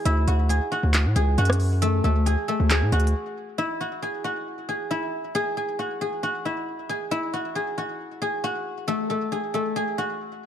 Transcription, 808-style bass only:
0, 0, Header, 1, 2, 480
1, 0, Start_track
1, 0, Tempo, 441176
1, 60, Time_signature, 4, 2, 24, 8
1, 11380, End_track
2, 0, Start_track
2, 0, Title_t, "808-style bass"
2, 0, Program_c, 0, 38
2, 60, Note_on_c, 0, 38, 114
2, 290, Note_off_c, 0, 38, 0
2, 300, Note_on_c, 0, 38, 107
2, 652, Note_off_c, 0, 38, 0
2, 907, Note_on_c, 0, 38, 114
2, 1147, Note_on_c, 0, 45, 101
2, 1164, Note_off_c, 0, 38, 0
2, 1254, Note_off_c, 0, 45, 0
2, 1260, Note_on_c, 0, 37, 107
2, 1490, Note_off_c, 0, 37, 0
2, 1500, Note_on_c, 0, 42, 107
2, 2191, Note_off_c, 0, 42, 0
2, 2220, Note_on_c, 0, 38, 108
2, 2572, Note_off_c, 0, 38, 0
2, 2827, Note_on_c, 0, 38, 112
2, 3067, Note_on_c, 0, 45, 99
2, 3083, Note_off_c, 0, 38, 0
2, 3174, Note_off_c, 0, 45, 0
2, 3180, Note_on_c, 0, 38, 107
2, 3419, Note_off_c, 0, 38, 0
2, 11380, End_track
0, 0, End_of_file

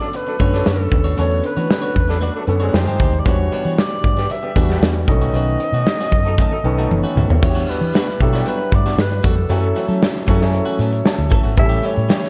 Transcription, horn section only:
0, 0, Header, 1, 2, 480
1, 0, Start_track
1, 0, Tempo, 519931
1, 1089, Time_signature, 4, 2, 24, 8
1, 11350, End_track
2, 0, Start_track
2, 0, Title_t, "Horn section"
2, 0, Program_c, 0, 61
2, 2, Note_on_c, 0, 54, 92
2, 3, Note_on_c, 0, 62, 92
2, 5, Note_on_c, 0, 57, 93
2, 5, Note_on_c, 0, 69, 101
2, 80, Note_off_c, 0, 54, 0
2, 81, Note_off_c, 0, 62, 0
2, 83, Note_off_c, 0, 57, 0
2, 83, Note_off_c, 0, 69, 0
2, 252, Note_on_c, 0, 54, 84
2, 254, Note_on_c, 0, 57, 87
2, 254, Note_on_c, 0, 62, 83
2, 254, Note_on_c, 0, 69, 95
2, 327, Note_off_c, 0, 54, 0
2, 328, Note_off_c, 0, 62, 0
2, 329, Note_off_c, 0, 57, 0
2, 329, Note_off_c, 0, 69, 0
2, 491, Note_on_c, 0, 57, 91
2, 491, Note_on_c, 0, 69, 99
2, 494, Note_on_c, 0, 54, 91
2, 497, Note_on_c, 0, 62, 90
2, 643, Note_off_c, 0, 57, 0
2, 643, Note_off_c, 0, 69, 0
2, 645, Note_off_c, 0, 54, 0
2, 647, Note_off_c, 0, 62, 0
2, 1925, Note_on_c, 0, 54, 96
2, 1927, Note_on_c, 0, 57, 97
2, 1927, Note_on_c, 0, 69, 105
2, 1932, Note_on_c, 0, 62, 99
2, 2004, Note_off_c, 0, 54, 0
2, 2005, Note_off_c, 0, 57, 0
2, 2005, Note_off_c, 0, 69, 0
2, 2008, Note_off_c, 0, 62, 0
2, 2172, Note_on_c, 0, 62, 83
2, 2175, Note_on_c, 0, 54, 88
2, 2176, Note_on_c, 0, 57, 90
2, 2176, Note_on_c, 0, 69, 98
2, 2248, Note_off_c, 0, 62, 0
2, 2251, Note_off_c, 0, 54, 0
2, 2251, Note_off_c, 0, 57, 0
2, 2251, Note_off_c, 0, 69, 0
2, 2412, Note_on_c, 0, 60, 87
2, 2418, Note_on_c, 0, 56, 91
2, 2418, Note_on_c, 0, 68, 99
2, 2419, Note_on_c, 0, 51, 93
2, 2565, Note_off_c, 0, 60, 0
2, 2569, Note_off_c, 0, 56, 0
2, 2569, Note_off_c, 0, 68, 0
2, 2570, Note_off_c, 0, 51, 0
2, 3856, Note_on_c, 0, 50, 97
2, 3857, Note_on_c, 0, 59, 101
2, 3861, Note_on_c, 0, 55, 99
2, 3861, Note_on_c, 0, 67, 107
2, 3932, Note_off_c, 0, 50, 0
2, 3933, Note_off_c, 0, 59, 0
2, 3935, Note_off_c, 0, 55, 0
2, 3935, Note_off_c, 0, 67, 0
2, 4091, Note_on_c, 0, 50, 86
2, 4091, Note_on_c, 0, 55, 92
2, 4091, Note_on_c, 0, 67, 100
2, 4092, Note_on_c, 0, 59, 89
2, 4168, Note_off_c, 0, 55, 0
2, 4168, Note_off_c, 0, 67, 0
2, 4169, Note_off_c, 0, 50, 0
2, 4169, Note_off_c, 0, 59, 0
2, 4331, Note_on_c, 0, 50, 93
2, 4331, Note_on_c, 0, 55, 94
2, 4331, Note_on_c, 0, 67, 102
2, 4332, Note_on_c, 0, 59, 89
2, 4485, Note_off_c, 0, 50, 0
2, 4485, Note_off_c, 0, 55, 0
2, 4485, Note_off_c, 0, 67, 0
2, 4486, Note_off_c, 0, 59, 0
2, 5768, Note_on_c, 0, 63, 93
2, 5769, Note_on_c, 0, 57, 95
2, 5769, Note_on_c, 0, 69, 103
2, 5770, Note_on_c, 0, 54, 96
2, 5847, Note_off_c, 0, 63, 0
2, 5848, Note_off_c, 0, 54, 0
2, 5848, Note_off_c, 0, 57, 0
2, 5848, Note_off_c, 0, 69, 0
2, 6007, Note_on_c, 0, 54, 91
2, 6009, Note_on_c, 0, 63, 89
2, 6010, Note_on_c, 0, 57, 89
2, 6010, Note_on_c, 0, 69, 96
2, 6086, Note_off_c, 0, 54, 0
2, 6088, Note_off_c, 0, 57, 0
2, 6088, Note_off_c, 0, 63, 0
2, 6088, Note_off_c, 0, 69, 0
2, 6248, Note_on_c, 0, 54, 92
2, 6248, Note_on_c, 0, 57, 102
2, 6248, Note_on_c, 0, 69, 111
2, 6249, Note_on_c, 0, 63, 93
2, 6403, Note_off_c, 0, 54, 0
2, 6403, Note_off_c, 0, 57, 0
2, 6403, Note_off_c, 0, 69, 0
2, 6404, Note_off_c, 0, 63, 0
2, 11350, End_track
0, 0, End_of_file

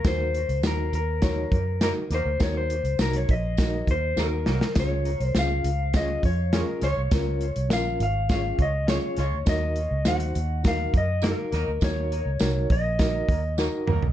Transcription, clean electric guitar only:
0, 0, Header, 1, 2, 480
1, 0, Start_track
1, 0, Tempo, 588235
1, 37, Time_signature, 4, 2, 24, 8
1, 11527, End_track
2, 0, Start_track
2, 0, Title_t, "Clean electric guitar"
2, 0, Program_c, 0, 27
2, 60, Note_on_c, 0, 72, 95
2, 498, Note_off_c, 0, 72, 0
2, 547, Note_on_c, 0, 70, 102
2, 767, Note_off_c, 0, 70, 0
2, 777, Note_on_c, 0, 70, 85
2, 1489, Note_off_c, 0, 70, 0
2, 1498, Note_on_c, 0, 70, 91
2, 1561, Note_off_c, 0, 70, 0
2, 1751, Note_on_c, 0, 72, 89
2, 1980, Note_off_c, 0, 72, 0
2, 1983, Note_on_c, 0, 73, 105
2, 2096, Note_off_c, 0, 73, 0
2, 2099, Note_on_c, 0, 72, 92
2, 2459, Note_off_c, 0, 72, 0
2, 2462, Note_on_c, 0, 70, 90
2, 2580, Note_off_c, 0, 70, 0
2, 2580, Note_on_c, 0, 73, 99
2, 2700, Note_off_c, 0, 73, 0
2, 2700, Note_on_c, 0, 75, 89
2, 3186, Note_off_c, 0, 75, 0
2, 3189, Note_on_c, 0, 72, 97
2, 3420, Note_on_c, 0, 70, 93
2, 3425, Note_off_c, 0, 72, 0
2, 3862, Note_off_c, 0, 70, 0
2, 3915, Note_on_c, 0, 73, 104
2, 4258, Note_off_c, 0, 73, 0
2, 4258, Note_on_c, 0, 72, 104
2, 4393, Note_off_c, 0, 72, 0
2, 4397, Note_on_c, 0, 77, 116
2, 4865, Note_off_c, 0, 77, 0
2, 4868, Note_on_c, 0, 75, 104
2, 5082, Note_off_c, 0, 75, 0
2, 5103, Note_on_c, 0, 73, 102
2, 5343, Note_off_c, 0, 73, 0
2, 5345, Note_on_c, 0, 70, 86
2, 5561, Note_off_c, 0, 70, 0
2, 5582, Note_on_c, 0, 73, 116
2, 6305, Note_off_c, 0, 73, 0
2, 6308, Note_on_c, 0, 77, 108
2, 6522, Note_off_c, 0, 77, 0
2, 6550, Note_on_c, 0, 77, 96
2, 6774, Note_off_c, 0, 77, 0
2, 6784, Note_on_c, 0, 77, 104
2, 7023, Note_off_c, 0, 77, 0
2, 7035, Note_on_c, 0, 75, 118
2, 7255, Note_off_c, 0, 75, 0
2, 7259, Note_on_c, 0, 73, 89
2, 7700, Note_off_c, 0, 73, 0
2, 7745, Note_on_c, 0, 75, 119
2, 8219, Note_off_c, 0, 75, 0
2, 8222, Note_on_c, 0, 78, 114
2, 8708, Note_off_c, 0, 78, 0
2, 8713, Note_on_c, 0, 77, 103
2, 8923, Note_off_c, 0, 77, 0
2, 8956, Note_on_c, 0, 75, 101
2, 9183, Note_on_c, 0, 70, 99
2, 9187, Note_off_c, 0, 75, 0
2, 9659, Note_off_c, 0, 70, 0
2, 9663, Note_on_c, 0, 73, 106
2, 10382, Note_on_c, 0, 75, 95
2, 10393, Note_off_c, 0, 73, 0
2, 11059, Note_off_c, 0, 75, 0
2, 11527, End_track
0, 0, End_of_file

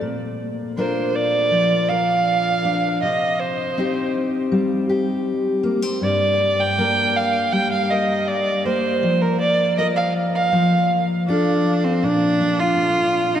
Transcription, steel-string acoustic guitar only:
0, 0, Header, 1, 3, 480
1, 0, Start_track
1, 0, Key_signature, -2, "major"
1, 0, Tempo, 750939
1, 13, Time_signature, 4, 2, 24, 8
1, 8565, End_track
2, 0, Start_track
2, 0, Title_t, "Steel-string acoustic guitar"
2, 0, Program_c, 0, 25
2, 7, Note_on_c, 0, 46, 66
2, 495, Note_on_c, 0, 62, 54
2, 499, Note_on_c, 0, 65, 53
2, 502, Note_on_c, 0, 70, 63
2, 965, Note_on_c, 0, 53, 58
2, 1209, Note_off_c, 0, 70, 0
2, 1217, Note_on_c, 0, 70, 65
2, 1686, Note_off_c, 0, 62, 0
2, 1693, Note_on_c, 0, 62, 59
2, 1898, Note_off_c, 0, 46, 0
2, 1902, Note_off_c, 0, 62, 0
2, 1904, Note_off_c, 0, 65, 0
2, 1904, Note_off_c, 0, 70, 0
2, 1927, Note_off_c, 0, 53, 0
2, 1933, Note_on_c, 0, 48, 69
2, 2413, Note_on_c, 0, 60, 56
2, 2417, Note_on_c, 0, 63, 56
2, 2424, Note_on_c, 0, 67, 59
2, 2887, Note_on_c, 0, 55, 62
2, 3121, Note_off_c, 0, 67, 0
2, 3128, Note_on_c, 0, 67, 62
2, 3598, Note_off_c, 0, 60, 0
2, 3601, Note_on_c, 0, 58, 60
2, 3722, Note_off_c, 0, 58, 0
2, 3722, Note_on_c, 0, 60, 52
2, 3818, Note_off_c, 0, 55, 0
2, 3823, Note_off_c, 0, 63, 0
2, 3843, Note_on_c, 0, 43, 71
2, 3845, Note_off_c, 0, 60, 0
2, 3850, Note_off_c, 0, 48, 0
2, 4328, Note_off_c, 0, 67, 0
2, 4334, Note_on_c, 0, 58, 59
2, 4341, Note_on_c, 0, 70, 66
2, 4809, Note_on_c, 0, 55, 62
2, 5044, Note_off_c, 0, 70, 0
2, 5052, Note_on_c, 0, 70, 60
2, 5523, Note_off_c, 0, 58, 0
2, 5531, Note_on_c, 0, 58, 59
2, 5740, Note_off_c, 0, 55, 0
2, 5741, Note_off_c, 0, 70, 0
2, 5765, Note_off_c, 0, 43, 0
2, 5771, Note_on_c, 0, 53, 72
2, 6252, Note_on_c, 0, 65, 55
2, 6255, Note_on_c, 0, 70, 65
2, 6701, Note_off_c, 0, 65, 0
2, 6703, Note_off_c, 0, 70, 0
2, 6719, Note_off_c, 0, 53, 0
2, 6727, Note_on_c, 0, 53, 70
2, 7213, Note_on_c, 0, 65, 62
2, 7221, Note_on_c, 0, 69, 68
2, 7662, Note_off_c, 0, 65, 0
2, 7666, Note_off_c, 0, 69, 0
2, 7687, Note_on_c, 0, 46, 67
2, 7690, Note_off_c, 0, 58, 0
2, 7932, Note_on_c, 0, 62, 56
2, 8159, Note_off_c, 0, 46, 0
2, 8565, Note_off_c, 0, 53, 0
2, 8565, Note_off_c, 0, 62, 0
2, 8565, End_track
3, 0, Start_track
3, 0, Title_t, "Muted steel-string acoustic guitar strokes"
3, 8166, Note_on_c, 9, 29, 70
3, 8230, Note_off_c, 9, 29, 0
3, 8565, End_track
0, 0, End_of_file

